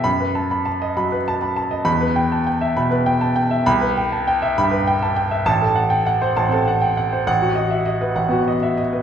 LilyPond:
<<
  \new Staff \with { instrumentName = "Grand piano" } { \time 4/4 \key b \phrygian \tempo 4 = 133 << { b''8 r2. r8 | b''8 r2. r8 | b''8 r2. r8 | a''8 r2. r8 |
fis''8 r2. r8 | } \\ { \tuplet 3/2 { r8 b'8 a''8 b''8 a''8 dis''8 b''8 b'8 a''8 b''8 a''8 dis''8 } | \tuplet 3/2 { r8 b'8 g''8 a''8 g''8 e''8 b''8 b'8 g''8 a''8 g''8 e''8 } | \tuplet 3/2 { r8 b'8 g''8 a''8 g''8 e''8 b''8 b'8 g''8 a''8 g''8 e''8 } | \tuplet 3/2 { r8 a'8 fis''8 g''8 fis''8 c''8 a''8 a'8 fis''8 g''8 fis''8 c''8 } |
\tuplet 3/2 { r8 fis'8 dis''8 e''8 dis''8 b'8 fis''8 fis'8 dis''8 e''8 dis''8 b'8 } | } >> }
  \new Staff \with { instrumentName = "Grand piano" } { \clef bass \time 4/4 \key b \phrygian fis,2 fis8 r4. | e,2 b,8 r4. | c,2 g,8 r4. | a,,2 a,,16 c'8 r4 r16 |
a,,2 a,,16 b8 r4 r16 | }
>>